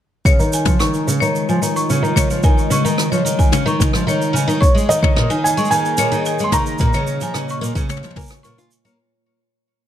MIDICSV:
0, 0, Header, 1, 6, 480
1, 0, Start_track
1, 0, Key_signature, -5, "major"
1, 0, Tempo, 545455
1, 226, Time_signature, 4, 2, 24, 8
1, 8690, End_track
2, 0, Start_track
2, 0, Title_t, "Felt piano"
2, 0, Program_c, 0, 0
2, 4056, Note_on_c, 0, 73, 82
2, 4284, Note_off_c, 0, 73, 0
2, 4304, Note_on_c, 0, 75, 101
2, 4789, Note_on_c, 0, 80, 86
2, 4799, Note_off_c, 0, 75, 0
2, 5009, Note_off_c, 0, 80, 0
2, 5022, Note_on_c, 0, 80, 94
2, 5668, Note_on_c, 0, 84, 72
2, 5702, Note_off_c, 0, 80, 0
2, 5738, Note_off_c, 0, 84, 0
2, 5747, Note_on_c, 0, 82, 96
2, 7391, Note_off_c, 0, 82, 0
2, 8690, End_track
3, 0, Start_track
3, 0, Title_t, "Marimba"
3, 0, Program_c, 1, 12
3, 227, Note_on_c, 1, 73, 80
3, 340, Note_off_c, 1, 73, 0
3, 472, Note_on_c, 1, 80, 65
3, 583, Note_off_c, 1, 80, 0
3, 700, Note_on_c, 1, 85, 65
3, 817, Note_off_c, 1, 85, 0
3, 1060, Note_on_c, 1, 73, 69
3, 1177, Note_off_c, 1, 73, 0
3, 1311, Note_on_c, 1, 80, 66
3, 1422, Note_off_c, 1, 80, 0
3, 1551, Note_on_c, 1, 85, 68
3, 1662, Note_off_c, 1, 85, 0
3, 1901, Note_on_c, 1, 73, 68
3, 2017, Note_off_c, 1, 73, 0
3, 2147, Note_on_c, 1, 80, 79
3, 2260, Note_off_c, 1, 80, 0
3, 2392, Note_on_c, 1, 85, 72
3, 2503, Note_off_c, 1, 85, 0
3, 2745, Note_on_c, 1, 73, 71
3, 2859, Note_off_c, 1, 73, 0
3, 2982, Note_on_c, 1, 80, 70
3, 3098, Note_off_c, 1, 80, 0
3, 3233, Note_on_c, 1, 85, 66
3, 3343, Note_off_c, 1, 85, 0
3, 3592, Note_on_c, 1, 73, 72
3, 3703, Note_off_c, 1, 73, 0
3, 3825, Note_on_c, 1, 80, 64
3, 3939, Note_off_c, 1, 80, 0
3, 4053, Note_on_c, 1, 85, 82
3, 4173, Note_off_c, 1, 85, 0
3, 4425, Note_on_c, 1, 73, 61
3, 4539, Note_off_c, 1, 73, 0
3, 4666, Note_on_c, 1, 80, 73
3, 4780, Note_off_c, 1, 80, 0
3, 4905, Note_on_c, 1, 85, 69
3, 5020, Note_off_c, 1, 85, 0
3, 5271, Note_on_c, 1, 73, 70
3, 5382, Note_off_c, 1, 73, 0
3, 5513, Note_on_c, 1, 80, 76
3, 5623, Note_off_c, 1, 80, 0
3, 5749, Note_on_c, 1, 85, 63
3, 5862, Note_off_c, 1, 85, 0
3, 6109, Note_on_c, 1, 73, 77
3, 6221, Note_off_c, 1, 73, 0
3, 6359, Note_on_c, 1, 80, 69
3, 6467, Note_off_c, 1, 80, 0
3, 6604, Note_on_c, 1, 85, 71
3, 6709, Note_off_c, 1, 85, 0
3, 6950, Note_on_c, 1, 73, 77
3, 7062, Note_off_c, 1, 73, 0
3, 7184, Note_on_c, 1, 80, 71
3, 7299, Note_off_c, 1, 80, 0
3, 7420, Note_on_c, 1, 85, 78
3, 7537, Note_off_c, 1, 85, 0
3, 7790, Note_on_c, 1, 73, 67
3, 7902, Note_off_c, 1, 73, 0
3, 8690, End_track
4, 0, Start_track
4, 0, Title_t, "Ambient pad"
4, 0, Program_c, 2, 92
4, 236, Note_on_c, 2, 49, 64
4, 493, Note_on_c, 2, 56, 82
4, 698, Note_on_c, 2, 65, 72
4, 1102, Note_on_c, 2, 75, 74
4, 4069, Note_off_c, 2, 56, 0
4, 4069, Note_on_c, 2, 51, 65
4, 4071, Note_off_c, 2, 49, 0
4, 4468, Note_on_c, 2, 68, 80
4, 4587, Note_on_c, 2, 58, 74
4, 4725, Note_off_c, 2, 65, 0
4, 5980, Note_on_c, 2, 46, 74
4, 5987, Note_off_c, 2, 51, 0
4, 6601, Note_on_c, 2, 73, 71
4, 6751, Note_off_c, 2, 75, 0
4, 6760, Note_off_c, 2, 68, 0
4, 6854, Note_on_c, 2, 65, 83
4, 7903, Note_off_c, 2, 46, 0
4, 7904, Note_off_c, 2, 73, 0
4, 7908, Note_off_c, 2, 65, 0
4, 7912, Note_off_c, 2, 58, 0
4, 8690, End_track
5, 0, Start_track
5, 0, Title_t, "Twelve-string acoustic guitar"
5, 0, Program_c, 3, 25
5, 229, Note_on_c, 3, 49, 83
5, 335, Note_off_c, 3, 49, 0
5, 345, Note_on_c, 3, 51, 89
5, 573, Note_off_c, 3, 51, 0
5, 587, Note_on_c, 3, 53, 67
5, 694, Note_off_c, 3, 53, 0
5, 705, Note_on_c, 3, 51, 65
5, 933, Note_off_c, 3, 51, 0
5, 944, Note_on_c, 3, 49, 92
5, 1053, Note_off_c, 3, 49, 0
5, 1070, Note_on_c, 3, 51, 90
5, 1296, Note_off_c, 3, 51, 0
5, 1311, Note_on_c, 3, 53, 71
5, 1417, Note_off_c, 3, 53, 0
5, 1426, Note_on_c, 3, 51, 68
5, 1654, Note_off_c, 3, 51, 0
5, 1670, Note_on_c, 3, 49, 91
5, 1776, Note_off_c, 3, 49, 0
5, 1782, Note_on_c, 3, 51, 92
5, 2012, Note_off_c, 3, 51, 0
5, 2028, Note_on_c, 3, 53, 72
5, 2135, Note_off_c, 3, 53, 0
5, 2141, Note_on_c, 3, 51, 71
5, 2372, Note_off_c, 3, 51, 0
5, 2378, Note_on_c, 3, 49, 87
5, 2490, Note_off_c, 3, 49, 0
5, 2504, Note_on_c, 3, 51, 90
5, 2733, Note_off_c, 3, 51, 0
5, 2741, Note_on_c, 3, 53, 62
5, 2851, Note_off_c, 3, 53, 0
5, 2857, Note_on_c, 3, 51, 67
5, 3090, Note_off_c, 3, 51, 0
5, 3098, Note_on_c, 3, 49, 84
5, 3210, Note_off_c, 3, 49, 0
5, 3217, Note_on_c, 3, 51, 103
5, 3450, Note_off_c, 3, 51, 0
5, 3462, Note_on_c, 3, 53, 62
5, 3572, Note_off_c, 3, 53, 0
5, 3579, Note_on_c, 3, 51, 84
5, 3811, Note_off_c, 3, 51, 0
5, 3811, Note_on_c, 3, 49, 94
5, 3927, Note_off_c, 3, 49, 0
5, 3938, Note_on_c, 3, 51, 96
5, 4062, Note_off_c, 3, 51, 0
5, 4176, Note_on_c, 3, 56, 69
5, 4289, Note_off_c, 3, 56, 0
5, 4300, Note_on_c, 3, 51, 63
5, 4531, Note_off_c, 3, 51, 0
5, 4544, Note_on_c, 3, 46, 84
5, 4653, Note_off_c, 3, 46, 0
5, 4664, Note_on_c, 3, 51, 86
5, 4893, Note_off_c, 3, 51, 0
5, 4903, Note_on_c, 3, 56, 77
5, 5012, Note_off_c, 3, 56, 0
5, 5025, Note_on_c, 3, 51, 72
5, 5254, Note_off_c, 3, 51, 0
5, 5260, Note_on_c, 3, 46, 101
5, 5371, Note_off_c, 3, 46, 0
5, 5382, Note_on_c, 3, 51, 86
5, 5612, Note_off_c, 3, 51, 0
5, 5631, Note_on_c, 3, 56, 74
5, 5736, Note_off_c, 3, 56, 0
5, 5740, Note_on_c, 3, 51, 71
5, 5971, Note_off_c, 3, 51, 0
5, 5988, Note_on_c, 3, 46, 97
5, 6095, Note_off_c, 3, 46, 0
5, 6110, Note_on_c, 3, 49, 99
5, 6336, Note_off_c, 3, 49, 0
5, 6345, Note_on_c, 3, 53, 75
5, 6454, Note_off_c, 3, 53, 0
5, 6463, Note_on_c, 3, 49, 74
5, 6692, Note_off_c, 3, 49, 0
5, 6699, Note_on_c, 3, 46, 101
5, 6810, Note_off_c, 3, 46, 0
5, 6822, Note_on_c, 3, 49, 97
5, 7052, Note_off_c, 3, 49, 0
5, 7065, Note_on_c, 3, 53, 72
5, 7173, Note_off_c, 3, 53, 0
5, 7185, Note_on_c, 3, 58, 93
5, 7294, Note_off_c, 3, 58, 0
5, 7433, Note_on_c, 3, 46, 77
5, 7538, Note_off_c, 3, 46, 0
5, 7553, Note_on_c, 3, 65, 70
5, 7657, Note_off_c, 3, 65, 0
5, 7786, Note_on_c, 3, 58, 95
5, 7894, Note_off_c, 3, 58, 0
5, 8690, End_track
6, 0, Start_track
6, 0, Title_t, "Drums"
6, 222, Note_on_c, 9, 36, 115
6, 228, Note_on_c, 9, 82, 52
6, 310, Note_off_c, 9, 36, 0
6, 316, Note_off_c, 9, 82, 0
6, 349, Note_on_c, 9, 82, 40
6, 437, Note_off_c, 9, 82, 0
6, 464, Note_on_c, 9, 82, 75
6, 552, Note_off_c, 9, 82, 0
6, 575, Note_on_c, 9, 45, 64
6, 582, Note_on_c, 9, 36, 95
6, 590, Note_on_c, 9, 82, 43
6, 663, Note_off_c, 9, 45, 0
6, 670, Note_off_c, 9, 36, 0
6, 678, Note_off_c, 9, 82, 0
6, 704, Note_on_c, 9, 82, 51
6, 705, Note_on_c, 9, 37, 76
6, 792, Note_off_c, 9, 82, 0
6, 793, Note_off_c, 9, 37, 0
6, 826, Note_on_c, 9, 82, 40
6, 914, Note_off_c, 9, 82, 0
6, 952, Note_on_c, 9, 82, 79
6, 1040, Note_off_c, 9, 82, 0
6, 1073, Note_on_c, 9, 82, 45
6, 1161, Note_off_c, 9, 82, 0
6, 1192, Note_on_c, 9, 82, 54
6, 1280, Note_off_c, 9, 82, 0
6, 1312, Note_on_c, 9, 82, 32
6, 1400, Note_off_c, 9, 82, 0
6, 1431, Note_on_c, 9, 82, 74
6, 1519, Note_off_c, 9, 82, 0
6, 1552, Note_on_c, 9, 82, 44
6, 1640, Note_off_c, 9, 82, 0
6, 1671, Note_on_c, 9, 82, 57
6, 1759, Note_off_c, 9, 82, 0
6, 1798, Note_on_c, 9, 82, 33
6, 1886, Note_off_c, 9, 82, 0
6, 1903, Note_on_c, 9, 36, 54
6, 1907, Note_on_c, 9, 45, 59
6, 1909, Note_on_c, 9, 82, 74
6, 1991, Note_off_c, 9, 36, 0
6, 1995, Note_off_c, 9, 45, 0
6, 1997, Note_off_c, 9, 82, 0
6, 2027, Note_on_c, 9, 82, 46
6, 2115, Note_off_c, 9, 82, 0
6, 2139, Note_on_c, 9, 82, 45
6, 2144, Note_on_c, 9, 36, 116
6, 2227, Note_off_c, 9, 82, 0
6, 2232, Note_off_c, 9, 36, 0
6, 2273, Note_on_c, 9, 82, 33
6, 2361, Note_off_c, 9, 82, 0
6, 2385, Note_on_c, 9, 82, 79
6, 2473, Note_off_c, 9, 82, 0
6, 2512, Note_on_c, 9, 82, 50
6, 2600, Note_off_c, 9, 82, 0
6, 2621, Note_on_c, 9, 37, 64
6, 2631, Note_on_c, 9, 82, 48
6, 2709, Note_off_c, 9, 37, 0
6, 2719, Note_off_c, 9, 82, 0
6, 2750, Note_on_c, 9, 82, 40
6, 2838, Note_off_c, 9, 82, 0
6, 2871, Note_on_c, 9, 82, 83
6, 2959, Note_off_c, 9, 82, 0
6, 2984, Note_on_c, 9, 36, 92
6, 2986, Note_on_c, 9, 82, 39
6, 3072, Note_off_c, 9, 36, 0
6, 3074, Note_off_c, 9, 82, 0
6, 3101, Note_on_c, 9, 45, 80
6, 3105, Note_on_c, 9, 82, 62
6, 3189, Note_off_c, 9, 45, 0
6, 3193, Note_off_c, 9, 82, 0
6, 3227, Note_on_c, 9, 82, 42
6, 3315, Note_off_c, 9, 82, 0
6, 3344, Note_on_c, 9, 36, 105
6, 3352, Note_on_c, 9, 82, 80
6, 3355, Note_on_c, 9, 45, 71
6, 3432, Note_off_c, 9, 36, 0
6, 3440, Note_off_c, 9, 82, 0
6, 3443, Note_off_c, 9, 45, 0
6, 3462, Note_on_c, 9, 37, 77
6, 3475, Note_on_c, 9, 82, 43
6, 3550, Note_off_c, 9, 37, 0
6, 3563, Note_off_c, 9, 82, 0
6, 3595, Note_on_c, 9, 82, 55
6, 3683, Note_off_c, 9, 82, 0
6, 3710, Note_on_c, 9, 82, 43
6, 3798, Note_off_c, 9, 82, 0
6, 3837, Note_on_c, 9, 82, 78
6, 3925, Note_off_c, 9, 82, 0
6, 3953, Note_on_c, 9, 82, 46
6, 4041, Note_off_c, 9, 82, 0
6, 4064, Note_on_c, 9, 36, 126
6, 4074, Note_on_c, 9, 82, 51
6, 4152, Note_off_c, 9, 36, 0
6, 4162, Note_off_c, 9, 82, 0
6, 4203, Note_on_c, 9, 82, 44
6, 4291, Note_off_c, 9, 82, 0
6, 4316, Note_on_c, 9, 82, 98
6, 4404, Note_off_c, 9, 82, 0
6, 4423, Note_on_c, 9, 36, 102
6, 4431, Note_on_c, 9, 45, 54
6, 4511, Note_off_c, 9, 36, 0
6, 4519, Note_off_c, 9, 45, 0
6, 4546, Note_on_c, 9, 37, 63
6, 4634, Note_off_c, 9, 37, 0
6, 4670, Note_on_c, 9, 82, 42
6, 4758, Note_off_c, 9, 82, 0
6, 4802, Note_on_c, 9, 82, 88
6, 4890, Note_off_c, 9, 82, 0
6, 4908, Note_on_c, 9, 82, 45
6, 4970, Note_off_c, 9, 82, 0
6, 4970, Note_on_c, 9, 82, 35
6, 5025, Note_off_c, 9, 82, 0
6, 5025, Note_on_c, 9, 82, 32
6, 5030, Note_off_c, 9, 82, 0
6, 5030, Note_on_c, 9, 82, 60
6, 5118, Note_off_c, 9, 82, 0
6, 5151, Note_on_c, 9, 82, 36
6, 5239, Note_off_c, 9, 82, 0
6, 5258, Note_on_c, 9, 82, 91
6, 5346, Note_off_c, 9, 82, 0
6, 5390, Note_on_c, 9, 82, 50
6, 5478, Note_off_c, 9, 82, 0
6, 5504, Note_on_c, 9, 82, 52
6, 5592, Note_off_c, 9, 82, 0
6, 5622, Note_on_c, 9, 82, 43
6, 5710, Note_off_c, 9, 82, 0
6, 5737, Note_on_c, 9, 45, 61
6, 5741, Note_on_c, 9, 36, 58
6, 5745, Note_on_c, 9, 82, 91
6, 5825, Note_off_c, 9, 45, 0
6, 5829, Note_off_c, 9, 36, 0
6, 5833, Note_off_c, 9, 82, 0
6, 5862, Note_on_c, 9, 82, 48
6, 5950, Note_off_c, 9, 82, 0
6, 5970, Note_on_c, 9, 82, 52
6, 5983, Note_on_c, 9, 36, 120
6, 6058, Note_off_c, 9, 82, 0
6, 6071, Note_off_c, 9, 36, 0
6, 6101, Note_on_c, 9, 82, 42
6, 6189, Note_off_c, 9, 82, 0
6, 6222, Note_on_c, 9, 82, 77
6, 6310, Note_off_c, 9, 82, 0
6, 6343, Note_on_c, 9, 82, 49
6, 6431, Note_off_c, 9, 82, 0
6, 6459, Note_on_c, 9, 37, 67
6, 6468, Note_on_c, 9, 82, 53
6, 6547, Note_off_c, 9, 37, 0
6, 6556, Note_off_c, 9, 82, 0
6, 6590, Note_on_c, 9, 82, 39
6, 6678, Note_off_c, 9, 82, 0
6, 6717, Note_on_c, 9, 82, 89
6, 6805, Note_off_c, 9, 82, 0
6, 6823, Note_on_c, 9, 36, 103
6, 6831, Note_on_c, 9, 82, 44
6, 6911, Note_off_c, 9, 36, 0
6, 6919, Note_off_c, 9, 82, 0
6, 6946, Note_on_c, 9, 45, 72
6, 6948, Note_on_c, 9, 82, 62
6, 7009, Note_off_c, 9, 45, 0
6, 7009, Note_on_c, 9, 45, 64
6, 7036, Note_off_c, 9, 82, 0
6, 7071, Note_off_c, 9, 45, 0
6, 7071, Note_on_c, 9, 45, 44
6, 7075, Note_on_c, 9, 82, 36
6, 7130, Note_off_c, 9, 45, 0
6, 7130, Note_on_c, 9, 45, 34
6, 7163, Note_off_c, 9, 82, 0
6, 7181, Note_off_c, 9, 45, 0
6, 7181, Note_on_c, 9, 45, 68
6, 7183, Note_on_c, 9, 36, 109
6, 7183, Note_on_c, 9, 82, 35
6, 7203, Note_off_c, 9, 82, 0
6, 7203, Note_on_c, 9, 82, 47
6, 7221, Note_off_c, 9, 82, 0
6, 7221, Note_on_c, 9, 82, 50
6, 7246, Note_off_c, 9, 82, 0
6, 7246, Note_on_c, 9, 82, 56
6, 7267, Note_off_c, 9, 82, 0
6, 7267, Note_on_c, 9, 82, 63
6, 7269, Note_off_c, 9, 45, 0
6, 7271, Note_off_c, 9, 36, 0
6, 7283, Note_off_c, 9, 82, 0
6, 7283, Note_on_c, 9, 82, 71
6, 7307, Note_on_c, 9, 37, 74
6, 7320, Note_off_c, 9, 82, 0
6, 7320, Note_on_c, 9, 82, 49
6, 7395, Note_off_c, 9, 37, 0
6, 7408, Note_off_c, 9, 82, 0
6, 7429, Note_on_c, 9, 82, 62
6, 7517, Note_off_c, 9, 82, 0
6, 7556, Note_on_c, 9, 82, 44
6, 7644, Note_off_c, 9, 82, 0
6, 7665, Note_on_c, 9, 82, 89
6, 7753, Note_off_c, 9, 82, 0
6, 7799, Note_on_c, 9, 82, 44
6, 7887, Note_off_c, 9, 82, 0
6, 8690, End_track
0, 0, End_of_file